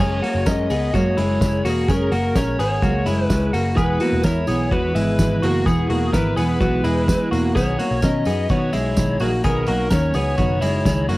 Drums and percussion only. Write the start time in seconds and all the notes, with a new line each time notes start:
0.00 kick, crash
0.23 open hi-hat
0.46 kick, snare, hi-hat pedal, ride, tambourine
0.70 open hi-hat, tambourine
0.94 kick, hi-hat pedal, ride, tambourine
1.18 open hi-hat, tambourine
1.41 kick, snare, ride, tambourine
1.65 open hi-hat, tambourine
1.88 kick, hi-hat pedal, ride, tambourine
2.12 open hi-hat, tambourine
2.36 kick, snare, hi-hat pedal, ride, tambourine
2.60 open hi-hat, tambourine
2.82 kick, hi-hat pedal, ride, tambourine
3.06 open hi-hat, tambourine
3.30 kick, snare, hi-hat pedal, ride, tambourine
3.54 open hi-hat, tambourine
3.77 kick, hi-hat pedal, ride, tambourine
4.00 open hi-hat, tambourine
4.23 kick, snare, ride, tambourine
4.47 open hi-hat, tambourine
4.71 kick, hi-hat pedal, ride
4.96 open hi-hat, tambourine
5.19 kick, snare, hi-hat pedal, ride, tambourine
5.43 open hi-hat, tambourine
5.66 kick, hi-hat pedal, ride, tambourine
5.90 open hi-hat
6.13 kick, snare, hi-hat pedal, ride, tambourine
6.37 open hi-hat, tambourine
6.61 kick, hi-hat pedal, ride, tambourine
6.84 open hi-hat, tambourine
7.08 kick, snare, hi-hat pedal, ride, tambourine
7.33 open hi-hat, tambourine
7.56 kick, ride, tambourine
7.79 open hi-hat, tambourine
8.02 kick, snare, hi-hat pedal, ride, tambourine
8.25 open hi-hat, tambourine
8.49 kick, hi-hat pedal, ride, tambourine
8.73 open hi-hat, tambourine
8.97 kick, snare, hi-hat pedal, ride, tambourine
9.20 open hi-hat, tambourine
9.44 kick, hi-hat pedal, ride, tambourine
9.66 open hi-hat, tambourine
9.90 kick, snare, hi-hat pedal, ride, tambourine
10.14 open hi-hat, tambourine
10.38 kick, hi-hat pedal, ride, tambourine
10.62 open hi-hat, tambourine
10.85 kick, snare, hi-hat pedal, ride, tambourine
11.09 open hi-hat, tambourine